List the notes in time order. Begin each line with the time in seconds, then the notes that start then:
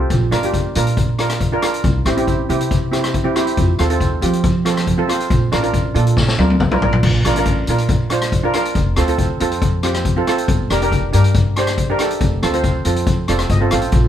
Already playing: C4 F4 G4
0.10 A#1, kick, closed hi-hat
0.31 G1 D4 F4 A#4, cross-stick, closed hi-hat
0.43 D4 F4 G4, closed hi-hat
0.54 kick, closed hi-hat
0.75 A#2 D4 F4 A#4, closed hi-hat
0.87 closed hi-hat
0.97 kick, closed hi-hat
1.19 D4 F4 A#4, cross-stick, closed hi-hat
1.29 cross-stick, closed hi-hat
1.40 kick, closed hi-hat
1.52 D4 F4 A#4
1.62 D4 F4 A#4, cross-stick, closed hi-hat
1.74 closed hi-hat
1.84 C2, kick, closed hi-hat
2.05 A1 C4 E4 G4, cross-stick, closed hi-hat
2.17 C4 E4 G4, closed hi-hat
2.28 kick, closed hi-hat
2.49 C3 C4 E4 G4, closed hi-hat
2.61 closed hi-hat
2.71 kick, closed hi-hat
2.92 C4 E4 G4, cross-stick, closed hi-hat
3.04 cross-stick, closed hi-hat
3.14 kick, closed hi-hat
3.24 C4 E4 G4
3.36 C4 E4 G4, cross-stick, closed hi-hat
3.47 closed hi-hat
3.57 F2, kick, closed hi-hat
3.79 D#2 C4 F4 A4, cross-stick, closed hi-hat
3.90 C4 F4 A4, closed hi-hat
4.01 kick, closed hi-hat
4.22 F3 C4 F4 G4, closed hi-hat
4.33 closed hi-hat
4.44 kick, closed hi-hat
4.65 C4 F4 A4, cross-stick, closed hi-hat
4.77 cross-stick, closed hi-hat
4.87 kick, closed hi-hat
4.98 C4 F4 A4
5.08 C4 F4 C5, cross-stick, closed hi-hat
5.20 closed hi-hat
5.30 A#1, kick, closed hi-hat
5.52 A1 D4 F4 A#4, cross-stick, closed hi-hat
5.62 D4 F4 A#4, closed hi-hat
5.74 kick, closed hi-hat
5.94 A#2 D4 F4 A4, closed hi-hat
6.07 closed hi-hat
6.17 kick, snare
6.28 snare
6.38 D2 D4 F4 A#4, high tom
6.50 high tom
6.60 C2, kick, mid tom
6.71 D4 F4 A#4, mid tom
6.82 A#1 D4 F4 A#4, floor tom
6.93 floor tom
7.03 A#1, kick, crash
7.25 A1 D4 F4 A#4, cross-stick, closed hi-hat
7.36 D4 F4 A#4, closed hi-hat
7.45 kick, closed hi-hat
7.67 A#2 D4 F4 A#4, closed hi-hat
7.78 closed hi-hat
7.88 kick, closed hi-hat
8.10 D4 F4 C5, cross-stick, closed hi-hat
8.21 cross-stick, closed hi-hat
8.32 kick, closed hi-hat
8.44 D4 F4 A#4
8.53 D4 F4 A#4, cross-stick, closed hi-hat
8.65 closed hi-hat
8.75 F1, kick, closed hi-hat
8.96 D2 C4 F4 A4, cross-stick, closed hi-hat
9.08 C4 F4 A4, closed hi-hat
9.18 kick, closed hi-hat
9.40 F2 C4 F4 A4, closed hi-hat
9.52 closed hi-hat
9.62 kick, closed hi-hat
9.83 C4 F4 G4, cross-stick, closed hi-hat
9.94 cross-stick, closed hi-hat
10.05 kick, closed hi-hat
10.16 C4 F4 A4
10.27 C4 F4 A4, cross-stick, closed hi-hat
10.38 closed hi-hat
10.48 G1, kick, closed hi-hat
10.70 F1 D4 G4 A#4, cross-stick, closed hi-hat
10.82 D4 G4 A#4, closed hi-hat
10.92 kick, closed hi-hat
11.13 G2 D4 G4 A#4, closed hi-hat
11.24 closed hi-hat
11.34 kick, closed hi-hat
11.56 D4 G4 C5, cross-stick, closed hi-hat
11.67 cross-stick, closed hi-hat
11.78 kick, closed hi-hat
11.90 D4 G4 A#4
11.99 D4 G4 A4, cross-stick, closed hi-hat
12.11 closed hi-hat
12.21 F1, kick, closed hi-hat
12.43 D2 C4 F4 A4, cross-stick, closed hi-hat
12.53 C4 F4 C5, closed hi-hat
12.64 kick, closed hi-hat
12.85 F2 C4 F4 A4, closed hi-hat
12.96 closed hi-hat
13.07 kick, closed hi-hat
13.28 F1 C4 F4 A4 D5, cross-stick, closed hi-hat
13.39 cross-stick, closed hi-hat
13.49 G1 D#5, kick, closed hi-hat
13.61 C4 F4 A4
13.71 A1 C4 F4 A4 F5, cross-stick, closed hi-hat
13.82 closed hi-hat
13.92 A#1, kick, closed hi-hat